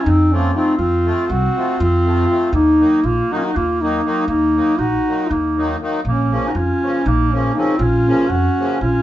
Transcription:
Already playing: C#4
0.05 F2 D#4
0.10 C4
0.31 F3 A3 A#3 C4 C#4 F4
0.54 F3 A3 C4 D#4 F4
0.78 F2 C4 F4
1.04 F3 A3 C4 F4
1.29 C2 C4 F#4
1.56 F3 A3 C4 F4
1.80 F2 C4 F4
2.05 F3 A3 C4 F4
2.29 F3 A3 C4 F4
2.53 D#2 A#3 D#4
2.79 D#3 F#3 A#3 D#4
3.04 A#1 A#3 F4
3.30 D#3 F#3 A#3 D#4 F#4
3.38 C#4 F4
3.43 D#4 F#4
3.55 D#2 A#3 F4
3.81 D#3 F#3 A#3 D#4
4.04 D#3 F#3 A#3 D#4
4.28 D#2 A#3 D#4
4.55 D#3 F#3 A#3 D#4
4.79 A#1 D#4 F#4
5.07 D#3 F#3 A#3 D#4
5.30 D#2 A#3 D#4
5.57 D#3 F#3 A#3 D#4
5.81 D#3 F#3 A#3 D#4
6.05 A#1 A#3 C#4
6.30 C#3 F3 A#3 C#4
6.48 D#4 F#4
6.55 F2 C#4 F4
6.82 C#3 F3 A#3 C#4
7.06 A#1 A#3 D#4
7.32 C#3 F3 A#3 C#4
7.54 C#3 F3 A#3 C#4 D#4
7.59 C4
7.78 A#1 C#4 F4
8.06 C#3 F3 A#3 C#4
8.29 F2 C#4 F#4
8.58 C#3 F3 A#3 C#4
8.81 A#1 C#4 F4

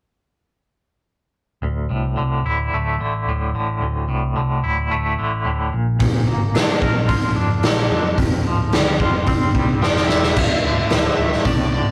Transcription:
1.62 D1 D2
1.90 C2 A2
2.17 C2 D3
2.44 D1 E4
2.72 D1 A3
2.99 A1 D3
3.26 D1 A2
3.53 A1 D3
3.80 D1 D2
4.08 C2 A2
4.37 C2 D3
4.64 D1 E4
4.91 D1 A3
5.19 A1 D3
5.45 D1 A2
5.73 A#1 A#2
5.99 A#1 A#2, kick, open hi-hat
6.27 G1 A#3
6.54 G2 D4, snare, open hi-hat
6.82 A#1 A#4, kick
7.08 A#1 F4, kick, open hi-hat
7.36 F2 D4
7.63 A#1 A#3, snare, open hi-hat
7.90 F2 D4
8.18 F1 F2, kick, open hi-hat
8.44 D1 F3
8.72 D2 G3, snare, open hi-hat
9.00 F1 F4, kick
9.27 F1 C4, kick, open hi-hat
9.55 C2 G3, kick
9.81 F1 F3 G5, snare
9.96 snare
10.07 E1 G3 E5, snare
10.23 snare
10.36 D1 D2, kick, crash
10.64 D1 D3
10.90 D1 A2, snare, open hi-hat
11.15 D1 A3 E5
11.32 snare
11.45 C2 A2 D5, kick, open hi-hat
11.73 D3 D5

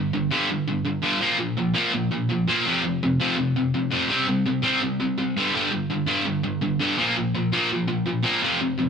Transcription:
Already playing: G2 D3
0.13 G2 D3
0.31 G2 D3 G3
0.50 G2 D3
0.68 G2 D3
0.85 G2 D3
1.02 G2 D3 G3
1.21 A#2 F3 A#3
1.38 A#2 F3
1.57 A#2 F3
1.74 A#2 F3 A#3
1.94 A#2 F3
2.12 A#2 F3
2.30 A#2 F3
2.48 A#2 F3 A#3
2.66 F2 C3 F3
2.84 F2 C3
3.03 F2 C3
3.20 F2 C3 F3
3.37 F2 C3
3.56 F2 C3
3.74 F2 C3
3.91 F2 C3 F3
4.09 C3 G3 C4
4.27 C3 G3
4.46 C3 G3
4.62 C3 G3 C4
4.81 C3 G3
5.00 C3 G3
5.18 C3 G3
5.37 G2 D3 G3
5.54 G2 D3 G3
5.71 G2 D3
5.90 G2 D3
6.06 G2 D3 G3
6.26 G2 D3
6.43 G2 D3
6.61 G2 D3
6.79 G2 D3 G3
6.98 A#2 F3 A#3
7.17 A#2 F3
7.35 A#2 F3
7.52 A#2 F3 A#3
7.72 A#2 F3
7.88 A#2 F3
8.06 A#2 F3
8.23 A#2 F3 A#3
8.43 F2 C3 F3
8.61 F2 C3
8.78 F2 C3

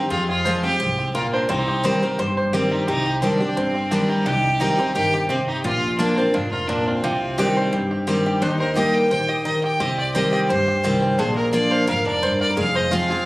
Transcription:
Already playing: C4 G4 C5
0.10 F2 C4 F4 G#4
0.29 F4 G#4
0.45 F3 G#3 C4 F4 C5
0.63 C4 F4 G4
0.80 C2 G#2
0.99 C4
1.15 A#2 F4 A#4
1.33 D4 C5
1.49 C2 C3 C4 D#4 C5
1.68 G4
1.84 D#3 G3 C4 G4 C5
2.02 C4 G4 A#4 C5
2.19 G1 G2 G4 C5
2.37 C5
2.53 D#3 G3 C4 G4
2.71 C4 D#4
2.88 C2 C3 C4 D#4 G4
3.06 G4
3.22 D#3 G3 C4 D4 G4 C5
3.40 C4 G4
3.57 G1 G2 C4 C5
3.75 C4
3.91 D#3 G3 C4 D4 G4
4.08 D#4 G4
4.26 C2 C3 D#4 G4
4.60 D#3 G3 C4 D#4 G4
4.79 C4 G4 C5
4.94 G1 D#3 D#4 G4
5.14 G4
5.29 C3 C4 G4
5.47 D#4 G4
5.64 A#1 A#2 F4
5.98 F3 A#3 D4 F4 A#4
6.16 C4 D4 F4 C5
6.33 F1 G#2 D4 F4
6.52 F4 A#4
6.68 A#2 D4
6.86 C4 F4
7.04 C2 C3 F4 G4
7.38 D#3 G3 C4 D#4 G4
7.57 C5
7.73 G1 G2 G4
7.91 G4
8.07 D#3 G3 C4 G4
8.26 G4
8.41 D#2 D#3 D#4 G4 C5
8.60 A#4 C5
8.75 G3 A#3 D#4 G4 D#5
8.94 G4 G5
9.10 A#1 D#3 C5 G5
9.29 G4 D#5
9.45 D#3 D#4 D#5
9.64 G4 G5
9.80 C2 C3 C4 G4 D#5
9.98 G4 D5
10.14 D#3 G3 C4 G4 C5 D#5
10.32 G4 D#5
10.48 D2 G2 C5
10.68 G4
10.84 C2 D#3 G3 C4 G4
11.02 C5
11.18 A#1 A#2 D4 G#4 C5
11.36 A#4
11.53 F3 A#3 D4 F4 D5
11.71 C5 F5
11.87 F1 G#2 A#4 F5
12.06 D4 D5
12.23 G2 C5
12.41 A#4 D5
12.50 A#4
12.57 F1 F2 G#4 F5
12.75 C5 D#5
12.91 F3 G#3 C4 F4 F5
13.10 C4 F4 G#4

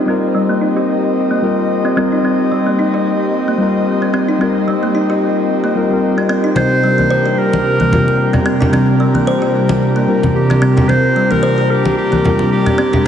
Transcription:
Already playing: G3 C4 F4 G4 A#4 C5 D#5
0.05 G3 C4 F4 A#4
0.35 G3
0.49 A#3
0.61 D#4
0.77 G4
1.31 A#3
1.42 G3 C4 F4 A#4
1.85 C4
1.96 G3 C4 F4 A#4
2.12 D#4
2.22 G3 C4 F4 A#4
2.52 G3
2.66 A#3
2.79 D#4
2.94 G4
3.48 A#3
3.58 G3 C4 F4 A#4
4.02 C4
4.14 C4
4.29 D#4
4.38 G3 C4 F4
4.42 A#4
4.68 G3
4.83 A#3
4.95 D#4
5.10 G4
5.64 A#3
5.75 G3 C4 F4 A#4
5.89 G3 C4 F4 A#4
6.18 C4
6.29 C4
6.44 D#4
6.55 C3 G3 C4 D4 F4 A#4 C5, muted conga
6.59 A#4
6.83 G3
6.98 A#3, high conga
7.10 C5
7.26 G4
7.32 C5
7.38 A#4
7.53 muted conga
7.80 A#3, high conga
7.90 C3 G3 C4 F4, high conga, low conga
7.94 A#4
8.08 muted conga
8.33 C4, low conga
8.46 C4
8.61 D4, low conga
8.71 C3 G3 C4 F4, muted conga
8.75 A#4
9.00 G3
9.14 A#3, high conga
9.27 C5
9.42 G4
9.69 muted conga
9.96 A#3
10.07 C3 G3 C4 F4 A#4
10.23 high conga, low conga
10.35 G4
10.50 C4, muted conga
10.61 C3 G3 C4 F4 A#4
10.77 D4, low conga
10.87 C3 G3 C4 F4 C5, muted conga
10.91 A#4
11.16 G3
11.31 A#3 A#4, high conga
11.43 C5
11.58 G4
11.71 G4
11.85 muted conga
11.98 G4
12.12 A#3, high conga
12.22 C3 G3 C4 F4, high conga, low conga
12.26 A#4
12.39 muted conga
12.52 G4
12.66 C4, low conga
12.78 C4
12.93 D4, low conga
13.03 C3 G3

